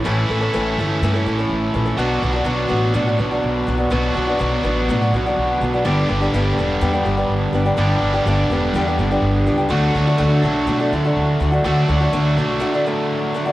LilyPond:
<<
  \new Staff \with { instrumentName = "Steel-string acoustic guitar" } { \time 4/4 \key d \major \tempo 4 = 124 <a, e a cis' a'>8 <e a cis' a'>16 <a cis' a'>16 <a, e a cis' a'>8 <e a cis' a'>8 <a, e a cis' a'>16 <a cis' a'>16 <e a cis' a'>16 <a cis' a'>8. <e a cis' a'>16 <a cis' a'>16 | <b, fis b d' fis'>8 <fis b d' fis'>16 <b d' fis'>16 <b, fis b d' fis'>8 <fis b d' fis'>8 <b, fis b d' fis'>16 <b d' fis'>16 <fis b d' fis'>16 <b d' fis'>8. <fis b d' fis'>16 <b d' fis'>16 | <b, fis b d' fis'>8 <fis b d' fis'>16 <b d' fis'>16 <b, fis b d' fis'>8 <fis b d' fis'>8 <b, fis b d' fis'>16 <b d' fis'>16 <fis b d' fis'>16 <b d' fis'>8. <fis b d' fis'>16 <b d' fis'>16 | <g, d g b d' g'>8 <g b d' g'>16 <g b d' g'>16 <g, d g b d' g'>8 <g b d' g'>8 <g, d g b d' g'>16 <g b d' g'>16 <g b d' g'>16 <g b d' g'>8. <g b d' g'>16 <g b d' g'>16 |
<g, d g b d' g'>8. <g b d' g'>16 <g, d g b d' g'>8 <g b d' g'>8 <g, d g b d' g'>16 <g b d' g'>16 <g b d' g'>16 <g b d' g'>8. <g b d' g'>16 <g b d' g'>16 | <d a d' fis'>8 <d a d' fis'>16 <a d' fis'>16 <d a d' fis'>8 <d a d' fis'>8 <d a d' fis'>16 <a d' fis'>16 <d a d' fis'>16 <a d' fis'>8. <d a d' fis'>16 <a d' fis'>16 | <d a d' fis'>8 <d a d' fis'>16 <a d' fis'>16 <d a d' fis'>8 <d a d' fis'>8 <d a d' fis'>16 <a d' fis'>16 <d a d' fis'>4 <d a d' fis'>16 <a d' fis'>16 | }
  \new Staff \with { instrumentName = "Overdriven electric guitar" } { \time 4/4 \key d \major <a, e a cis' e'>1 | <b, fis b d' fis'>1 | <b, fis b d' fis'>1 | <g, d g b d' g'>1 |
<g, d g b d' g'>1 | <d fis a d' fis'>1 | <d fis a d' fis'>1 | }
  \new Staff \with { instrumentName = "Upright bass" } { \clef bass \time 4/4 \key d \major a,,8 a,,8 a,,8 g,,8 g,8 a,,8 a,,8 bes,,8 | b,,8 b,,8 b,,8 a,,8 a,8 b,,8 b,,8 b,,8 | b,,8 b,,8 b,,8 a,,8 a,8 b,,8 b,,8 b,,8 | g,,8 g,,8 g,,8 e,,8 e,8 g,,8 g,,8 g,,8 |
g,,8 g,,8 g,,8 e,,8 e,8 g,,8 g,,8 cis,8 | d,8 d,8 d,8 b,,8 b,8 d,8 d,8 d,8 | d,8 d,8 d,8 b,,8 r2 | }
>>